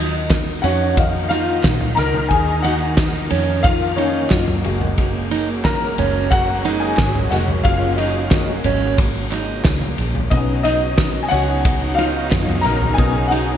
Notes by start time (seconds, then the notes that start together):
Already playing: D#2 D#3 F#3 A#3 D#4 F4 D#5
0.00 D#4
0.30 kick, snare, clap, ride
0.62 F2 C#4 F#4 F#5, ride
0.97 D#3 D#4 F5, kick, ride
1.29 D#4 F4 F5, ride
1.64 A#2, kick, snare, clap, ride
1.81 floor tom
1.95 C#2 A#4 A#5, snare, ride
2.14 floor tom
2.29 D#2 G#4 G#5, kick, ride
2.62 D#3 D#4 F#4 F#5, ride
2.97 kick, snare, clap, ride
3.30 F2 C#4, ride
3.63 F4 F5, kick, ride
3.96 C#4 D#4 C#5, ride
4.30 F#2 F#3 D#4 F4, kick, snare, clap, ride
4.48 floor tom
4.64 F#1 C#3 F#3 G#3 A#3 F#4, ride
4.81 floor tom
4.98 kick, ride
5.31 D#4, ride
5.64 A#4 A#5, kick, snare, clap, ride
5.98 F#1 C#4, floor tom, ride
6.31 F#4 F#5, kick, ride
6.65 D#4, ride
6.80 G#4 G#5
6.97 G#1, kick, snare, clap, ride
7.15 floor tom
7.30 F1 G#3 A#3 F#4 F#5, snare, ride
7.48 floor tom
7.64 F#1 F4 F5, kick, ride
7.96 D#4 D#5, ride
8.31 G#3 A#3 F#4, kick, snare, clap, ride
8.64 G#1 C#4, floor tom, ride
8.98 kick, ride
9.32 D#4, clap, ride
9.64 C#2, kick, snare, clap, ride
9.82 floor tom
9.98 A#1, ride
10.15 floor tom
10.30 B1 C#3 F#3 B3 C#4 D#4 D#5, kick, ride
10.63 D#4 D#5, ride
10.98 kick, snare, clap, ride
11.23 G#5
11.29 C#4 F#4 F#5, ride
11.33 C#2
11.65 kick, ride
11.95 D#4 F4 F5, ride
12.31 F#2, kick, snare, clap, ride
12.48 floor tom
12.61 A#1 A#5, snare, ride
12.65 A#4
12.82 floor tom
12.94 B3 C#4 D#4 G#5
12.98 B1 G#4, kick, ride
13.28 D#4 F#4 F#5
13.32 ride